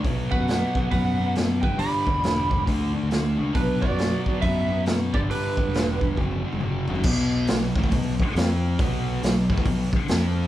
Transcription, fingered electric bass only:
X:1
M:4/4
L:1/16
Q:"Swing" 1/4=137
K:Bm
V:1 name="Fingered electric bass" clef=bass
B,,,2 z F,,2 z3 F,,6 G,,, G,,, | G,,2 z E,,,4- E,,, D,,2 z D,,3 C,,2 | B,,,2 z F,,2 z3 F,,6 G,,, G,,, | G,,2 z E,,,4- E,,, F,,,2 z F,,,3 F,,,2 |
B,,,4 B,,,2 A,,,2 B,,,2 z2 =F,,4 | B,,,4 B,,,2 A,,,2 B,,,2 z2 =F,,4 |]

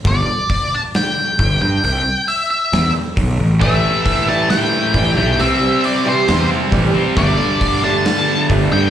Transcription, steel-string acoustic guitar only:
X:1
M:4/4
L:1/8
Q:1/4=135
K:Clyd
V:1 name="Steel-string acoustic guitar" clef=bass
z8 | z8 | [A,,E,G,] [A,,E,] [A,,E,] [A,,E,G,] [A,,E,] [A,,E,] [A,,E,G,] [A,,E,] | [C,E,G,] [C,E,] [C,E,] [C,E,G,] [C,E,] [C,E,] [C,E,G,] [C,E,] |
[G,A,D] [G,A,] [G,A,] [G,A,D] [G,A,] [G,A,] [G,A,D] [G,A,] |]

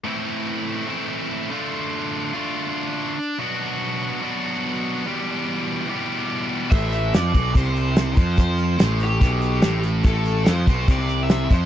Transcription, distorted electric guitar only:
X:1
M:4/4
L:1/8
Q:1/4=144
K:Am
V:1 name="Distorted electric guitar" clef=bass
[A,,E,A,CE]4 [A,,E,A,CE]3 [D,A,DF]- | [D,A,DF]3 [D,A,DF]4 z | [B,,^F,B,D^F]4 [B,,F,B,DF]4 | [E,,B,,E,G,B,G]4 [E,,B,,E,G,B,G]4 |
A,,2 F, B,, C,3 F,- | F,2 A,,2 B,,2 A,,2 | A,,2 F, B,, C,3 F, |]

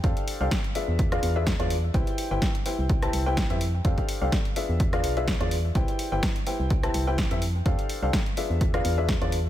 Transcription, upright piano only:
X:1
M:4/4
L:1/16
Q:"Swing 16ths" 1/4=126
K:C
V:1 name="Upright piano"
[DGAcf]3 [DGAcf] z2 [DF_ABe]3 [DF^GBf]2 [DFGBe] z [DFGBd] z2 | [EGBcg]3 [EGBcg] z2 [EGBcg]3 [EGBca]2 [EGBcg] z [EGBce] z2 | [DGAcf]3 [DGAcf] z2 [DF_ABe]3 [DF^GBf]2 [DFGBe] z [DFGBd] z2 | [EGBcg]3 [EGBcg] z2 [EGBcg]3 [EGBca]2 [EGBcg] z [EGBce] z2 |
[DGAcf]3 [DGAcf] z2 [DF_ABe]3 [DF^GBf]2 [DFGBe] z [DFGBd] z2 |]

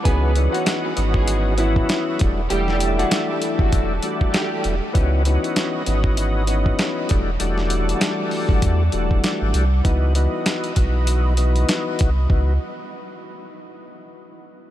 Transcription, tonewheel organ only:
X:1
M:4/4
L:1/8
Q:"Swing 16ths" 1/4=98
K:Elyd
V:1 name="Tonewheel organ"
[E,B,CDF] [E,B,CDF]2 [E,B,CDF]2 [E,B,CEF]2 [E,=G,=A,=DF] | [E,=G,=A,=DE]4- [E,G,A,DE] [E,G,A,DF]2 z | [E,B,CDF] [E,B,CDF]2 [E,B,CDF]2 [E,B,CDF]2 [E,=G,=A,=DF] | [E,=G,=A,=DF]4- [E,G,A,DF] [E,G,A,DF]2 z |
[E,B,DF] [E,B,DF]2 [E,B,DF]2 [E,B,DF]2 z | [E,B,DF] z6 z |]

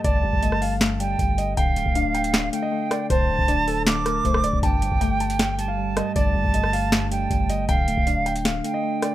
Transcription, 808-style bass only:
X:1
M:4/4
L:1/16
Q:1/4=157
K:Dphr
V:1 name="808-style bass" clef=bass
G,,,2 G,,, G,,, G,,,8 G,,,4 | D,,,3 D,,,6- D,,, z6 | D,,,2 D,,, D,,, D,,,8 D,,,3 D,,, | G,,,3 G,,,12 z |
G,,,2 G,,, G,,, G,,,8 G,,,4 | D,,,3 D,,,6- D,,, z6 |]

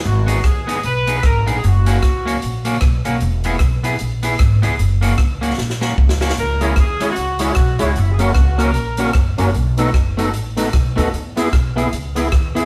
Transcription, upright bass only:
X:1
M:4/4
L:1/8
Q:"Swing" 1/4=152
K:F#mix
V:1 name="Upright bass" clef=bass
G,,,2 D,,2 B,,,2 G,,, A,,, | F,,,2 C,,2 A,,,2 B,,, B,,, | E,,,2 B,,,2 A,,,2 G,,, C,, | F,,,2 C,,2 A,,,2 C,,2 |
C,,2 D,,2 C,,2 B,,, C,, | F,,,2 C,,2 A,,,2 F,,, F,,, | B,,,2 F,,,2 =A,,,2 B,,, D,, | E,,2 B,,,2 C,,2 D,,2 |]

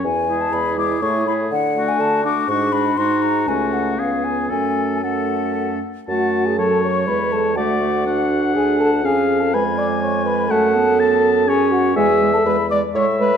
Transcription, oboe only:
X:1
M:3/4
L:1/8
Q:1/4=122
K:F#m
V:1 name="Oboe"
z G2 G G G | z F2 F F F | F2 F2 G2 | A2 A3 z |
a2 c4 | d2 f4 | ^e2 g4 | f2 a2 c2 |
e3 z e2 |]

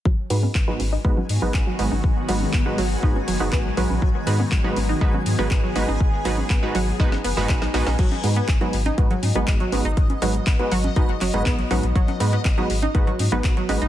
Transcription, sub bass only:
X:1
M:4/4
L:1/16
Q:1/4=121
K:G#m
V:1 name="Sub bass" clef=bass
G,,, z G,, z G,,, z G,,, z G,,, z G,, G,,, G,,, z G,,, G,,, | G,,, z G,,, z G,,, z G,,, z F,,, z F,,, F,,, A,,, z A,,, A,,, | G,,, z G,, z G,,, z G,,, z G,,, z G,, G,,, G,,, z G,,, G,,, | G,,, z G,,, z G,,, z G,,, z F,,, z F,,, F,,, A,,, z A,,, A,,, |
G,,, z G,, z G,,, z G,,, z G,,, z G,, G,,, G,,, z G,,, G,,, | G,,, z G,,, z G,,, z G,,, z F,,, z F,,, F,,, A,,, z A,,, A,,, | G,,, z G,, z G,,, z G,,, z G,,, z G,, G,,, G,,, z G,,, G,,, |]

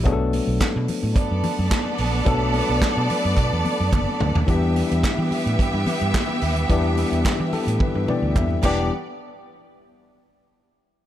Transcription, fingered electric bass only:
X:1
M:4/4
L:1/16
Q:1/4=108
K:Em
V:1 name="Fingered electric bass" clef=bass
B,,,3 B,,, z B,, z A,, z F,, z F,, z2 ^A,,,2 | B,,,3 B,,, z B,, z F,, B,, E,, z F,, F,,, z D,, ^D,, | E,,3 E,, z E, z A,, z G,, z G,, z2 ^D,,2 | E,,3 E,, z E, z A,, z G,, z D,, E,,2 E,,,2 |
z16 |]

